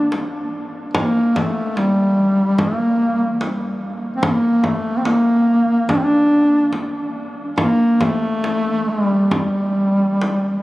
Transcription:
Already playing: D4
0.12 frame drum
0.94 A#3, frame drum
1.36 A3, frame drum
1.77 G3, frame drum
2.58 A#3, frame drum
3.41 frame drum
4.16 C4
4.23 A#3, frame drum
4.64 A3, frame drum
4.98 C4
5.05 A#3, frame drum
5.89 D4, frame drum
5.97 C4
6.03 D4
6.73 frame drum
7.58 A#3, frame drum
8.01 A3, frame drum
8.44 frame drum
8.89 G3
9.31 G3, frame drum
10.22 frame drum

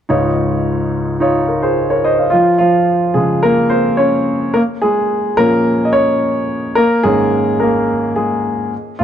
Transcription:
0.09 C#2 G#2 D#4 F4 C#5
1.20 D#4 F4 C#5
1.48 A#4
1.62 G#4 C5
1.90 A#4 C#5
2.04 C5 D#5
2.19 C#5 F5
2.30 F3 F4
2.58 F3 F4
3.14 C#3 F3 G#3 G#4
3.43 A#3 A#4
3.69 C4 C5
3.97 C#4 C#5
4.54 A#3 A#4
4.82 G#3 G#4
5.37 A#2 F3 A#3 C#4 A#4
5.85 D#5
5.93 C#4 C#5
6.75 A#3 A#4
7.03 G#2 D#3 G#3 C#4 G#4
7.60 A#3 A#4
8.16 G#3 G#4
8.99 A2 A3 F4

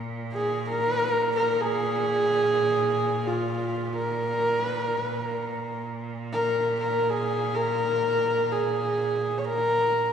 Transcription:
Already playing: A#2
0.33 G#4
0.68 A#4
1.35 A#4
1.61 G#4
3.27 F4
3.96 A#4
4.64 B4
4.82 A#4
5.02 B4
5.07 A#2
5.20 A#4
6.33 A#4
6.79 A#4
7.10 G#4
7.55 A#4
8.52 G#4
9.38 C#5
9.45 A#4

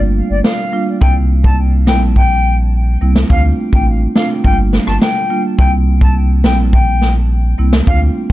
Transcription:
Already playing: G1 G3 A#3 D4 F4
0.30 G1 D5
0.44 F5, snare
0.73 G3 A#3 D4 F4
1.01 C2 G3 A#3 C4 E4 G5, kick
1.44 G3 A#3 C4 E4 A5, kick
1.87 A#1 G3 A#3 C4 E4 G5, snare
2.16 G5, kick
3.01 C2 G3 A#3 C4 E4
3.16 snare
3.30 D2 A3 C4 D4 F4 F5, kick
3.73 A1 A3 C4 D4 F4 G5, kick
4.16 A3 C4 D4 F4 F5, snare
4.44 G1 G3 A#3 D4 F4 G5, kick
4.73 snare
4.87 G1 A5, cross-stick
5.01 G5, snare
5.30 G3 A#3 D4 F4
5.58 C2 G3 A#3 C4 E4 G5, kick
6.01 G3 A#3 C4 E4 A5, kick
6.44 A#1 G3 A#3 C4 E4 G5, snare
6.73 G5, kick
7.02 snare
7.58 C2 G3 A#3 C4 E4
7.73 snare
7.87 D2 A3 C4 D4 F4 F5, kick

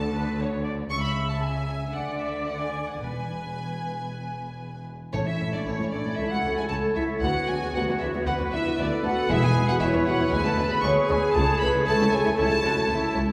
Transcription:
Already playing: D2 D3 A4 A5
0.14 B4
0.39 C#5
0.65 D5
0.90 C#2 C#3 E5 C#6
1.02 B5
1.29 A5
1.42 G#5
1.93 D2 D3 D5 F#5
2.19 E5
2.46 F#5
2.59 G#5
2.86 F#5
2.98 E1 E2 B4 G#5
5.13 A1 A2 A3 C#4 E4 C#5
5.27 E4 E5
5.39 A1 A2 A3 C#4
5.53 A2 C#4 D4 E4 D5
5.65 A1 A2 A3 C#4 C#5
5.79 A2 C#4 E4
5.91 A1 A2 A3 C#4 D4 D5
6.05 A2 C#4 E4
6.16 C#2 E4 A4 E5
6.20 A3
6.29 C#2 F#4 F#5
6.34 C#4 E4
6.44 C#2 A3 C#4
6.57 C#2 C#4 E4 G#4 G#5
6.69 C#2 A3 A4 A5
6.95 C#2 A3 C#4 E4 E5
7.20 D2 B3 D4 F#4 F#5
7.48 D2 B3 D4 G#4 G#5
7.62 D2 B3 F#4
7.74 D2 B3 F#5
7.78 F#4
7.88 D2 B3 F#4
7.99 D2 B3 D4 E4 E5
8.14 D2 B3 F#4
8.26 D2 B3 F#4 B4 F#5
8.39 D2 B3 F#4
8.52 D2 B3 D4 E4 E5
8.65 D2 B3 F#4
8.79 D2 B3 D4 A4 D5
9.03 D2 B3 D4 F#4 F#5
9.29 E1 E2 G#3 E4 G#4 E5
9.43 G#4 G#5
9.56 E1 E2 G#3 B3
9.68 E2 B3 E4 F#4 F#5
9.80 E1 E2 G#3 E4 C#5 E5
9.92 E2 B3 E4
10.05 E1 E2 G#3 B3 F#4 F#5
10.09 F#5
10.19 E2 B3 E4
10.31 D2 G#3 B3 G#4 B4 G#5
10.44 D2 B3 E4 A4 A5
10.57 D2 G#3 D4
10.69 D2 B3 E4 B4 B5
10.81 D2 G#3 B3 G#4 C#5 C#6
10.85 C#6
11.06 D2 G#3 D4 G#5
11.11 D2 G#4 G#5
11.32 C#2 A3 A5
11.36 C#2 A4 C#5 A5
11.60 C#2 A3 C#4 B4 B5
11.74 C#2 A3 E4
11.87 C#2 A3 A4 A5
12.01 C#2 A3 E4
12.11 C#2 A3 C#4 G#5
12.15 G#4
12.25 C#2 A3 E4
12.37 C#2 A3 E4 A4 A5
12.50 C#2 A3 E4
12.63 C#2 A3 C#4 F#4
12.75 C#2 A3 E4
12.87 C#2 A3 E4
13.14 C#2 A3 C#4

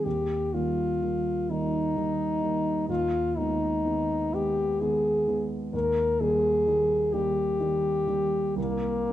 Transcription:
0.05 D#2 G4
0.54 D#3 G3 A#3 F4
1.01 D#3 G3 A#3
1.50 D#3 G3 A#3 D#4
1.96 D#3 G3 A#3
2.42 D#3 G3 A#3
2.89 D#2 F4
3.37 D#3 G#3 B3 D#4
3.85 D#3 G#3 B3
4.34 D#3 G#3 B3 G4
4.81 D#3 G#3 B3 G#4
5.27 D#3 G#3 B3
5.74 D#2 A#4
6.20 D#3 G3 A#3 G#4
6.67 D#3 G3 A#3
7.13 D#3 G3 A#3 G4
7.60 D#3 G3 A#3
8.07 D#3 G3 A#3
8.56 C2 A#3
9.09 D#3 G3 C4

